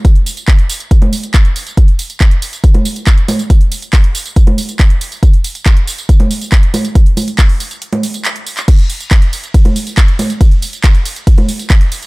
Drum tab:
CC |----------------|----------------|----------------|----------------|
RD |----------------|----------------|----------------|----------------|
HH |xxoxxxoxxxoxxxox|xxoxxxoxxxoxxxox|xxoxxxoxxxoxxxox|xxoxxxoxxxoxxxox|
TB |x-xxx-xxx-xxx-xx|x-xxx-xxx-xxx-xx|x-xxx-xxx-xxx-xx|x-xxx-xxx-xxx-xx|
CP |----x-------x---|----x-------x---|----x-------x---|----x-------x---|
CG |---------o------|---------o----o-|---------o------|---------o----o-|
BD |o---o---o---o---|o---o---o---o---|o---o---o---o---|o---o---o---o---|

CC |----------------|x---------------|----------------|
RD |----------------|x---x---x---x---|x---x---x---x---|
HH |xxoxxooxxxoxxxox|xxoxxxoxxxoxxxox|xxoxxxoxxxoxxxox|
TB |x-xxx-xxx-xxx-xx|x-xxx-xxx-xxx-xx|x-xxx-xxx-xxx-xx|
CP |----x-------x--x|----x-------x---|----x-------x---|
CG |--o------o------|---------o----o-|---------o------|
BD |o---o-----------|o---o---o---o---|o---o---o---o---|